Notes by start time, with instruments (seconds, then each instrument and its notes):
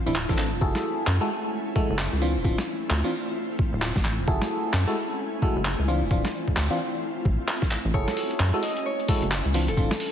Already playing: ambient pad A3 C4 E4 F4
0.06 analog synth bass D1, fm electric piano E3 C4 D4 E4
0.15 clap
0.29 analog synth bass A1, fm electric piano E3 C4 D4 A4, kick, snare
0.38 clap
0.52 analog synth bass D1
0.61 analog synth bass F#1, ambient pad C#4 G#5, fm electric piano E4 F#4 G#4 A4, kick
0.75 snare
1.07 analog synth bass F#2, clap
1.21 fm electric piano G#3 E4 F#4 A4
1.76 fm electric piano G#3 E4 F#4 A4, kick
1.90 analog synth bass F#1
1.99 clap
2.13 analog synth bass C#2
2.22 fm electric piano E3 C4 D4 F4, ambient pad C4 F4
2.36 analog synth bass D1
2.44 analog synth bass D1, fm electric piano E3 C4 D4 F4, kick
2.58 snare
2.90 analog synth bass D2, clap
3.04 fm electric piano E3 C4 D4 F4
3.59 kick
3.73 analog synth bass D1
3.82 clap
3.96 analog synth bass A1, kick, snare
4.05 clap
4.19 analog synth bass D1
4.28 analog synth bass F#1, ambient pad C#4 G#5, fm electric piano E4 F#4 G#4 A4, kick
4.42 snare
4.73 analog synth bass F#2, clap
4.87 fm electric piano G#3 E4 F#4 A4
5.42 fm electric piano G#3 E4 F#4 A4, kick
5.56 analog synth bass F#1
5.65 clap
5.79 analog synth bass C#2
5.88 fm electric piano E3 C4 D4 F4, ambient pad C4 F4
6.02 analog synth bass D1
6.11 analog synth bass D1, fm electric piano E3 C4 D4 F4, kick
6.25 snare
6.48 kick
6.57 analog synth bass D2, clap
6.71 fm electric piano E3 C4 D4 F4
7.25 analog synth bass A1, kick
7.48 clap
7.62 kick, snare
7.71 clap
7.85 analog synth bass A1
7.94 analog synth bass F#1, ambient pad C#4 G#5, fm electric piano E4 F#4 G#4 A4, harp C#5, kick
8.08 snare
8.17 open hi-hat
8.31 closed hi-hat
8.40 analog synth bass F#2, clap
8.54 fm electric piano G#3 E4 F#4 A4
8.63 harp D#5, open hi-hat
8.77 closed hi-hat
8.86 harp C#5
9.00 closed hi-hat
9.08 fm electric piano G#3 E4 F#4 A4, kick, open hi-hat
9.22 analog synth bass F#1, closed hi-hat
9.31 clap
9.45 analog synth bass C#2, closed hi-hat
9.54 fm electric piano E3 C4 D4 F4, ambient pad A3 C4 E4 F4, open hi-hat
9.68 analog synth bass D1, harp A4, closed hi-hat
9.77 analog synth bass D1, fm electric piano E3 C4 D4 F4, kick
9.91 snare
10.00 open hi-hat